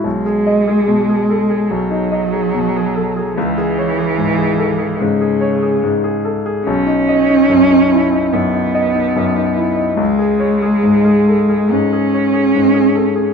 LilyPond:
<<
  \new Staff \with { instrumentName = "Grand piano" } { \time 4/4 \key cis \minor \tempo 4 = 72 b,,16 gis'16 dis''16 gis'16 b,16 gis'16 a'16 gis'16 b,,16 dis'16 dis''16 gis'16 b,16 gis'16 a'16 gis'16 | cis,16 gis'16 cis''16 gis'16 gis,16 gis'16 a'16 gis'16 gis,16 gis'16 cis''16 gis'16 gis,16 gis'16 a'16 gis'16 | b,,16 dis'16 dis''16 dis'16 fis,16 dis'16 e'16 dis'16 fis,16 dis'16 dis''16 dis'16 fis,16 dis'16 e'16 dis'16 | cis,16 gis'16 cis''16 gis'16 gis,16 gis'16 a'16 gis'16 gis,16 gis'16 cis''16 gis'16 gis,16 gis'16 a'16 gis'16 | }
  \new Staff \with { instrumentName = "Cello" } { \clef bass \time 4/4 \key cis \minor gis2 fis2 | e2 cis4. r8 | cis'2 b2 | gis2 cis'2 | }
>>